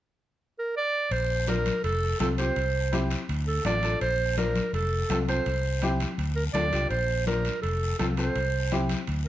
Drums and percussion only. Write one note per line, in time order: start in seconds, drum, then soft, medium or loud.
1.11 high timbale medium
1.11 long guiro medium
1.48 high conga medium
1.48 high timbale medium
1.48 short guiro medium
1.66 high conga medium
1.66 high timbale medium
1.66 short guiro medium
1.84 high timbale medium
1.84 long guiro medium
2.20 high conga medium
2.20 high timbale medium
2.20 low timbale medium
2.20 short guiro medium
2.38 high timbale medium
2.38 short guiro medium
2.56 high timbale medium
2.56 long guiro medium
2.93 high conga medium
2.93 high timbale medium
2.93 short guiro medium
3.10 high timbale medium
3.10 short guiro medium
3.29 high timbale medium
3.29 long guiro medium
3.65 high conga medium
3.65 high timbale medium
3.65 low timbale medium
3.65 short guiro medium
3.83 high timbale medium
3.83 short guiro medium
4.01 high timbale medium
4.01 long guiro medium
4.37 high conga medium
4.37 high timbale medium
4.37 short guiro medium
4.56 high conga medium
4.56 high timbale medium
4.56 short guiro medium
4.74 high timbale medium
4.74 long guiro medium
5.10 high conga medium
5.10 high timbale medium
5.10 low timbale medium
5.10 short guiro medium
5.29 high timbale medium
5.29 short guiro medium
5.46 high timbale medium
5.46 long guiro medium
5.82 high conga medium
5.82 high timbale medium
5.82 short guiro medium
6.00 high conga medium
6.00 high timbale medium
6.00 short guiro medium
6.19 high timbale medium
6.19 long guiro medium
6.55 high conga medium
6.55 high timbale medium
6.55 low timbale medium
6.55 short guiro medium
6.73 high timbale medium
6.73 short guiro medium
6.91 high timbale medium
6.91 long guiro medium
7.27 high conga medium
7.27 high timbale medium
7.27 short guiro medium
7.45 high conga medium
7.45 high timbale medium
7.45 short guiro medium
7.63 high timbale medium
7.63 long guiro medium
7.99 high conga medium
7.99 high timbale medium
7.99 low timbale medium
7.99 short guiro medium
8.17 high timbale medium
8.17 short guiro medium
8.36 high timbale medium
8.36 long guiro medium
8.72 high conga medium
8.72 high timbale medium
8.72 short guiro medium
8.89 high conga medium
8.89 high timbale medium
8.89 short guiro medium
9.07 high timbale medium
9.07 long guiro medium